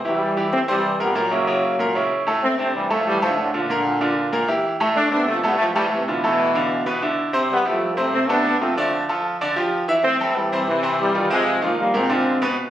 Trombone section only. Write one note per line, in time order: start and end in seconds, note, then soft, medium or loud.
0.06 0.49 E3 medium
0.06 0.49 G3 medium
0.53 0.60 A3 medium
0.53 0.60 C4 loud
0.68 0.97 E3 medium
0.68 0.98 G3 medium
1.01 1.16 G3 medium
1.01 1.16 B3 medium
1.15 2.07 F#3 medium
1.15 2.07 A#3 medium
2.43 2.58 A3 medium
2.43 2.58 C4 loud
2.59 2.74 A3 medium
2.59 2.73 C4 loud
2.74 2.90 E3 medium
2.74 2.89 G3 medium
2.91 3.07 F3 medium
2.91 3.06 A3 loud
3.07 3.22 E3 medium
3.07 3.21 G3 loud
3.22 3.37 D3 medium
3.22 3.37 F3 loud
3.38 3.54 A2 medium
3.38 3.53 D3 medium
3.54 4.46 A#2 medium
3.54 4.45 D3 medium
4.96 5.11 A3 medium
4.96 5.10 D4 loud
5.12 5.27 B3 medium
5.12 5.27 D4 loud
5.28 5.44 F3 medium
5.28 5.43 A3 loud
5.44 5.60 G3 medium
5.44 5.58 B3 medium
5.58 5.68 F3 medium
5.58 5.66 A3 loud
5.74 5.89 E3 medium
5.74 5.89 G3 loud
5.90 6.08 C3 medium
5.90 6.06 E3 medium
6.07 7.00 B2 medium
6.07 6.98 E3 loud
7.51 7.65 G3 medium
7.51 7.66 B3 loud
7.67 7.96 F3 medium
7.67 7.96 A3 medium
7.97 8.12 A3 medium
7.97 8.12 C4 medium
8.13 8.28 A3 medium
8.13 8.28 C4 loud
8.29 8.61 B3 medium
8.29 8.61 D4 loud
8.60 8.76 A3 medium
8.60 8.75 C4 medium
8.77 9.07 F3 medium
8.77 9.06 A3 medium
10.04 10.19 A3 medium
10.04 10.19 C4 loud
10.20 10.34 A3 medium
10.20 10.35 C4 loud
10.36 10.67 E3 medium
10.36 10.67 G3 medium
10.68 10.97 C3 medium
10.68 10.97 E3 loud
10.99 11.29 E3 medium
10.99 11.29 G3 medium
11.31 11.60 F3 medium
11.31 11.61 G#3 loud
11.62 11.77 F3 medium
11.62 11.78 A#3 medium
11.80 11.94 G3 medium
11.80 11.94 A#3 medium
11.95 12.42 G#3 medium
11.95 12.43 C4 medium